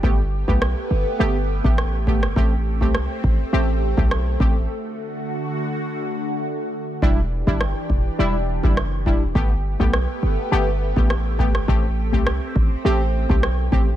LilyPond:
<<
  \new Staff \with { instrumentName = "Analog synth pad" } { \time 4/4 \key g \major \tempo 4 = 103 << { <a g'>1~ | <a g'>1 | <d fis'>1 | <e g'>1 |
<a g'>1~ | <a g'>1 | } \\ { b1 | c'1 | r1 | d'1 |
b1 | c'1 | } >> }
  \new Staff \with { instrumentName = "Synth stab" } { \time 4/4 \key g \major <a b g'>16 r8 <a b g'>16 r4 <a b g'>16 r8 <a b g'>16 r8 <a b g'>16 r16 | <a c' g'>16 r8 <a c' g'>16 r4 <a c' g'>16 r8 <a c' g'>16 r8 <a c' g'>16 r16 | r1 | <g d' e'>16 r8 <g d' e'>16 r4 <g d' e'>16 r8 <g d' e'>16 r8 <g d' e'>16 r16 |
<a b g'>16 r8 <a b g'>16 r4 <a b g'>16 r8 <a b g'>16 r8 <a b g'>16 r16 | <a c' g'>16 r8 <a c' g'>16 r4 <a c' g'>16 r8 <a c' g'>16 r8 <a c' g'>16 r16 | }
  \new Staff \with { instrumentName = "808-style bass" } { \clef bass \time 4/4 \key g \major g,,8. b,,8 r16 g,,16 r16 g,,8. a,,8. g,,8 | a,,8. c,8 r16 a,,16 r16 a,,8. b,,8. a,,8 | r1 | e,,8. g,,8 r16 e,,16 r16 e,,8. fis,,8. e,,8 |
g,,8. b,,8 r16 g,,16 r16 g,,8. a,,8. g,,8 | a,,8. c,8 r16 a,,16 r16 a,,8. b,,8. a,,8 | }
  \new DrumStaff \with { instrumentName = "Drums" } \drummode { \time 4/4 bd8. bd16 ss4 r8. bd16 ss8 bd16 ss16 | bd8. bd16 ss8 bd8 r8. bd16 ss8 bd8 | r4 r4 r4 r4 | bd8. bd16 ss8 bd8 r8. bd16 ss8 bd8 |
bd8. bd16 ss4 r8. bd16 ss8 bd16 ss16 | bd8. bd16 ss8 bd8 r8. bd16 ss8 bd8 | }
>>